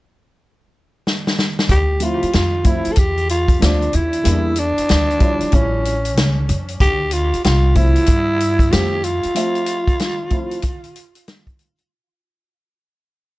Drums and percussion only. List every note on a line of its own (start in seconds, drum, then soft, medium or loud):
1.07 snare medium
1.27 snare medium
1.39 snare medium
1.59 snare medium
1.69 kick loud
1.69 closed hi-hat medium
2.00 closed hi-hat medium
2.23 closed hi-hat soft
2.33 snare medium
2.33 closed hi-hat medium
2.64 kick medium
2.64 closed hi-hat medium
2.85 closed hi-hat medium
2.96 kick medium
2.96 closed hi-hat medium
3.18 closed hi-hat soft
3.29 closed hi-hat medium
3.48 kick medium
3.48 closed hi-hat medium
3.62 snare loud
3.62 closed hi-hat loud
3.82 closed hi-hat soft
3.93 closed hi-hat medium
4.13 closed hi-hat soft
4.25 closed hi-hat medium
4.56 closed hi-hat medium
4.78 closed hi-hat soft
4.89 snare medium
4.89 closed hi-hat medium
5.10 closed hi-hat soft
5.20 kick medium
5.20 closed hi-hat medium
5.41 closed hi-hat medium
5.52 kick medium
5.52 closed hi-hat medium
5.85 closed hi-hat medium
6.05 closed hi-hat medium
6.17 snare loud
6.17 closed hi-hat medium
6.49 closed hi-hat medium
6.68 closed hi-hat soft
6.80 kick loud
6.80 closed hi-hat medium
7.11 closed hi-hat medium
7.34 closed hi-hat soft
7.44 snare medium
7.44 closed hi-hat medium
7.75 kick medium
7.75 closed hi-hat medium
7.96 closed hi-hat soft
8.06 kick medium
8.06 closed hi-hat medium
8.40 closed hi-hat medium
8.59 kick medium
8.59 closed hi-hat medium
8.72 snare loud
8.72 closed hi-hat loud
9.04 closed hi-hat medium
9.23 closed hi-hat soft
9.36 closed hi-hat medium
9.55 closed hi-hat soft
9.66 closed hi-hat medium
9.88 kick medium
9.88 closed hi-hat soft
9.99 snare medium
9.99 closed hi-hat medium
10.30 kick medium
10.30 closed hi-hat medium
10.51 closed hi-hat medium
10.62 kick medium
10.62 closed hi-hat medium
10.84 closed hi-hat soft
10.96 closed hi-hat medium
11.15 closed hi-hat medium
11.28 snare loud
11.28 closed hi-hat medium
11.47 kick medium
11.47 closed hi-hat soft
11.59 closed hi-hat medium
11.78 closed hi-hat soft